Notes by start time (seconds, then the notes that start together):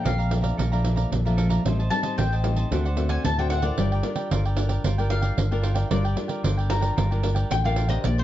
Already playing: F3 A3 D4
0.03 A#1 F2 A4 D5 F5 A#5, pandeiro
0.18 D5 F5 A#5, pandeiro
0.31 F3 A3 D4, pandeiro
0.42 D5 F5 A#5, pandeiro
0.57 A#1 A#2 A4 D5 F5 A#5, pandeiro
0.72 F3 A3 D4 D5 F5 A#5, pandeiro
0.84 F3 A3 D4, pandeiro
0.96 D5 F5 A#5, pandeiro
1.12 A#1 F2, muted cavaquinho stroke, pandeiro
1.25 F3 A3 D4 D5 F5 A#5, pandeiro
1.37 A4 D5 F5 A#5, pandeiro
1.49 D5 F5 A#5, pandeiro
1.65 A1 A2 G3 C4 D#4 G4 C5 D#5 A5, pandeiro
1.79 C5 D#5 A5, pandeiro
1.90 G3 C4 D#4 A5, muted cavaquinho stroke, pandeiro
2.03 C5 D#5 A5, pandeiro
2.18 A1 A2 G4 C5 D#5 G5 A5, pandeiro
2.32 C5 D#5 A5, pandeiro
2.44 G3 C4 D#4, pandeiro
2.56 C5 D#5 A5, pandeiro
2.71 D2 D3 A3 C4 D4 F#4 C5 D5 F#5, pandeiro
2.85 C5 D5 F#5, pandeiro
2.96 A3 C4 F#4, pandeiro
3.09 C5 D5 F#5 G#5, pandeiro
3.24 D2 A2 A5, muted cavaquinho stroke, pandeiro
3.38 A3 C4 F#4 C5 D5 F#5 G5, pandeiro
3.50 D4 C5 D5 F#5, pandeiro
3.62 D4 F4 A#4 C5 D5 F#5, pandeiro
3.78 G1 G3 F4 A#4 D5 G5, pandeiro
3.92 A#4 D5 G5, pandeiro
4.03 D4 F4 A#4, muted cavaquinho stroke, pandeiro
4.16 A#4 D5 G5, pandeiro
4.31 G1 D3 F4 A#4 D5 G5, pandeiro
4.45 A#4 D5 G5, pandeiro
4.56 D4 F4 A#4, pandeiro
4.69 A#4 D5 G5, pandeiro
4.84 G1 G3 F4 A#4 D5 G5, pandeiro
4.98 D4 F4 A#4 D5 G5, pandeiro
5.10 D4 F4 A#4 F5, pandeiro
5.22 A#4 D5 G5, pandeiro
5.37 G1 D3, muted cavaquinho stroke, pandeiro
5.51 D4 F4 A#4 D5 G5, pandeiro
5.62 F4 A#4 D5 G5, pandeiro
5.75 A#4 D5 G5, pandeiro
5.91 G1 G3 D4 F4 A#4 D5 G5, pandeiro
6.05 A#4 D5 G5, pandeiro
6.16 D4 F4 A#4, muted cavaquinho stroke, pandeiro
6.28 A#4 D5 G5, pandeiro
6.43 G1 D3 F4 A#4 D5 G5, pandeiro
6.57 A#4 D5 G5, pandeiro
6.70 D4 F4 A#4 A#5, pandeiro
6.81 A#4 D5 G5, pandeiro
6.96 G1 G3 F4 A#4 D5 G5, pandeiro
7.11 D4 F4 A#4 D5 G5, pandeiro
7.23 D4 F4 A#4, pandeiro
7.35 A#4 D5 G5, pandeiro
7.50 A1 D3 G5, muted cavaquinho stroke, pandeiro
7.64 D4 F4 A#4 D5 F5 G5, pandeiro
7.76 F4 A#4 D5 G5, pandeiro
7.88 D4 G4 A#4 C5 D5 D#5 G5, pandeiro
8.04 A#1 A#3 D5, pandeiro
8.18 C5, pandeiro